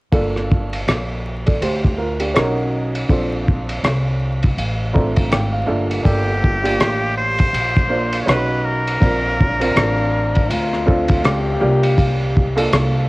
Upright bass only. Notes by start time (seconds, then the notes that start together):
0.13 G1
0.87 A#1
1.61 D2
2.36 B1
3.09 A#1
3.83 C2
4.57 A1
5.32 G#1
5.69 G1
6.05 G1
6.79 A1
7.53 A#1
8.27 B1
9.02 A#1
9.76 A1
10.50 D2
11.24 C#2
11.62 C2
12.73 C2